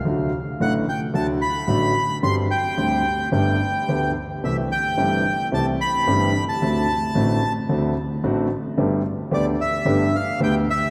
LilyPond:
<<
  \new Staff \with { instrumentName = "Bandoneon" } { \time 4/4 \key d \dorian \tempo 4 = 110 r4 fis''8 g''8 a''8 b''4. | c'''8 g''4. g''4. r8 | e''8 g''4. a''8 b''4~ b''16 a''16~ | a''4.~ a''16 r2 r16 |
r4 d''8 e''4 f''8 g''8 e''8 | }
  \new Staff \with { instrumentName = "Grand piano" } { \clef bass \time 4/4 \key d \dorian <d, d fis a fis'>8 r8 <a,, a, d fis a fis'>8 r8 <d, d fis a fis'>8 r8 <a,, a, d fis a fis'>8 r8 | <g,, g, d g c' g'>8 r8 <d, d g c' g'>8 r8 <g,, g, d a b g'>8 r8 <d, d a b g'>8 r8 | <c, c e a c' g'>8 r8 <g,, g, e a c' g'>8 r8 <c, c e a c' g'>8 r8 <g,, g, e a c' g'>8 r8 | <d, d a c' fis'>8 r8 <a,, a, d a c' fis'>8 r8 <d, d a c' fis'>8 r8 <a,, a, d a c' fis'>8 r8 |
<g,, g, d a b g'>8 r8 <d, d a b g'>8 r8 <g,, g, d a b g'>8 r8 <d, d a b g'>8 r8 | }
>>